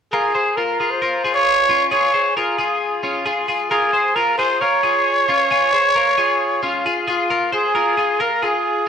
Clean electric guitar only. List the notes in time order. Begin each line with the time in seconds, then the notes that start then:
0.13 F4 A#4
0.35 G#4 C5
0.57 F4 A#4
0.80 F4 G#4
1.02 F4 A#4
1.24 F4 G#4
1.69 C#4 F4
1.91 F4 G#4
2.14 G#4 C5
2.37 F4 A#4
2.58 F4 G#4
3.03 C#4 F4
3.26 F4 G#4
3.48 F4 G#4
3.71 F4 A#4
3.93 G#4 C5
4.16 F4 A#4
4.39 F4 G#4
4.61 F4 A#4
4.83 F4 G#4
5.29 C#4 F4
5.51 F4 G#4
5.73 G#4 C5
5.95 F4 A#4
6.18 F4 G#4
6.63 C#4 F4
6.86 F4 G#4
7.07 F4 G#4
7.30 F4 A#4
7.52 G#4 C5
7.75 F4 A#4
7.97 F4 G#4
8.20 F4 A#4
8.42 F4 G#4